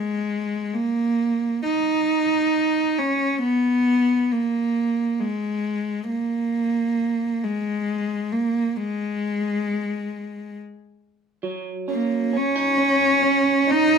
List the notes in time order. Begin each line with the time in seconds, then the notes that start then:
Already playing: G#3
0.74 A#3
1.63 D#4
2.99 C#4
3.43 B3
4.32 A#3
5.20 G#3
6.10 A#3
7.44 G#3
8.32 A#3
8.77 G#3
11.43 F#3
11.88 A#3 C#4
12.33 C#4
12.56 D#4
12.78 C#4
13.23 C#4
13.67 D#4